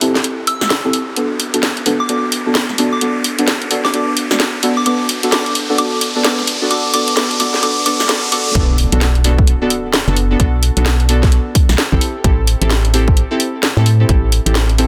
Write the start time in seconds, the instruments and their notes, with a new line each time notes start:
Already playing: riser
0.01 synth stab C4 E4 G4 A4, open hi-hat
0.15 snare
0.24 closed hi-hat
0.47 synth bell E6, open hi-hat
0.61 snare
0.70 snare, closed hi-hat
0.85 synth stab C4 E4 G4 A4
0.93 open hi-hat
1.16 synth stab B3 D4 F#4 A4, closed hi-hat
1.40 open hi-hat
1.54 synth stab B3 D4 F#4 A4, closed hi-hat
1.63 snare, closed hi-hat
1.77 closed hi-hat
1.86 synth stab B3 D4 F#4 A4, snare, open hi-hat
2.00 synth bell D6
2.09 synth stab B3 D4 F#4 A4, closed hi-hat
2.32 open hi-hat
2.46 synth stab B3 D4 F#4 A4
2.55 snare, closed hi-hat
2.69 snare
2.78 synth stab B3 D4 F#4 A4, open hi-hat
2.93 synth bell D6
3.01 synth stab B3 D4 F#4 A4, closed hi-hat
3.24 open hi-hat
3.39 synth stab B3 D4 F#4 A4, closed hi-hat
3.48 snare, closed hi-hat
3.62 closed hi-hat
3.71 synth stab B3 D4 F#4 A4, open hi-hat
3.85 synth bell D6, snare
3.94 synth stab B3 D4 F#4 A4, closed hi-hat
4.17 open hi-hat
4.31 synth stab B3 D4 F#4 A4, snare
4.40 snare, closed hi-hat
4.63 synth stab B3 D4 F#4 A4, open hi-hat
4.77 synth bell D6
4.86 synth stab B3 D4 F#4 A4, synth bell D6, closed hi-hat
5.09 open hi-hat
5.23 synth stab B3 D4 F#4 A4, closed hi-hat
5.32 synth stab B3 D4 F#4 A4, synth bell D6, snare, closed hi-hat
5.46 closed hi-hat
5.55 open hi-hat
5.69 synth stab B3 D4 F#4 A4
5.78 synth stab B3 D4 F#4 A4, synth bell D6, closed hi-hat
6.01 open hi-hat
6.15 synth stab B3 D4 F#4 A4
6.24 synth stab B3 D4 F#4 A4, synth bell D6, snare, closed hi-hat
6.39 snare
6.47 open hi-hat
6.61 synth stab B3 D4 F#4 A4
6.71 synth stab B3 D4 F#4 A4, synth bell D6, closed hi-hat
6.94 synth stab B3 D4 F#4 A4, synth bell D6, open hi-hat
7.08 closed hi-hat
7.17 synth stab B3 D4 F#4 A4, synth bell D6, snare, closed hi-hat
7.31 closed hi-hat
7.40 synth stab B3 D4 F#4 A4, synth bell D6, snare, open hi-hat
7.54 snare
7.63 synth stab B3 D4 F#4 A4, synth bell D6, closed hi-hat
7.86 synth stab B3 D4 F#4 A4, synth bell D6, open hi-hat
8.00 snare
8.09 synth stab B3 D4 F#4 A4, synth bell D6, snare, closed hi-hat
8.32 synth stab B3 D4 F#4 A4, synth bell D6, open hi-hat
8.55 fm bass B1, synth stab B3 D4 F#4 A4, kick, closed hi-hat, impact
8.78 open hi-hat
8.92 fm bass B1, synth stab B3 D4 F#4 A4, closed hi-hat
9.01 snare, closed hi-hat
9.15 closed hi-hat
9.24 synth stab B3 D4 F#4 A4, snare, open hi-hat
9.38 kick
9.47 closed hi-hat
9.62 synth stab B3 D4 F#4 A4
9.70 open hi-hat
9.94 snare, closed hi-hat
10.08 fm bass F#1, synth stab B3 D4 F#4 A4, snare
10.17 open hi-hat
10.31 synth stab B3 D4 F#4 A4
10.40 fm bass B1, synth stab B3 D4 F#4 A4, kick, closed hi-hat
10.63 open hi-hat
10.77 fm bass B1, synth stab B3 D4 F#4 A4, closed hi-hat
10.86 snare, closed hi-hat
11.00 closed hi-hat
11.09 synth stab B3 D4 F#4 A4, open hi-hat
11.23 kick, snare
11.32 closed hi-hat
11.55 kick, open hi-hat
11.69 fm bass B1, snare
11.78 snare, closed hi-hat
11.92 fm bass A1, synth stab C4 E4 G4 A4, kick
12.01 open hi-hat
12.24 fm bass A1, synth stab C4 E4 G4 A4, kick, closed hi-hat
12.47 open hi-hat
12.61 fm bass A1, synth stab C4 E4 G4 A4, closed hi-hat
12.70 snare, closed hi-hat
12.85 closed hi-hat
12.94 synth stab C4 E4 G4 A4, snare, open hi-hat
13.08 kick
13.17 closed hi-hat
13.31 synth stab C4 E4 G4 A4
13.40 open hi-hat
13.63 snare, closed hi-hat
13.77 fm bass A2, synth stab C4 E4 G4 A4, snare
13.86 open hi-hat
14.00 synth stab C4 E4 G4 A4
14.09 fm bass A1, synth stab C4 E4 G4 A4, kick, closed hi-hat
14.32 open hi-hat
14.46 fm bass A1, synth stab C4 E4 G4 A4, closed hi-hat
14.55 snare, closed hi-hat
14.70 closed hi-hat
14.78 synth stab C4 E4 G4 A4, open hi-hat